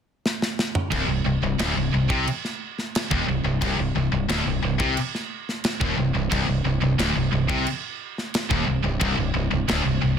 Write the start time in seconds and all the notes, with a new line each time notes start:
0.26 snare
0.42 snare
0.59 snare
0.75 mid tom
0.92 C1 C2, kick, crash
1.08 C1 C2
1.25 C1 C2
1.42 C1 C2
1.59 D1 D2, snare, crash
1.77 C1 C2
1.94 C1 C2
2.10 C2 C3, kick
2.27 crash
2.45 snare
2.78 snare
2.95 snare, crash
3.11 D#1 D#2, kick
3.28 C1 C2
3.44 C1 C2
3.61 C1 C2, kick, crash
3.78 C1 C2
3.95 C1 C2
4.12 C1 C2
4.29 D1 D2, snare, crash
4.46 C1 C2
4.62 C1 C2
4.79 C2 C3, kick
4.97 crash
5.15 snare
5.49 snare
5.64 snare, crash
5.81 D#1 D#2, kick
5.98 C1 C2
6.15 C1 C2
6.31 C1 C2, kick, crash
6.48 C1 C2
6.65 C1 C2
6.82 C1 C2
6.99 D1 D2, snare, crash
7.15 C1 C2
7.32 C1 C2
7.49 C2 C3, kick
7.67 crash
8.18 snare
8.34 snare, crash
8.50 D#1 D#2, kick
8.67 C1 C2
8.84 C1 C2
9.00 C1 C2, kick, crash
9.17 C1 C2
9.34 C1 C2
9.51 C1 C2
9.68 D1 D2, snare, crash
9.85 C1 C2
10.02 C1 C2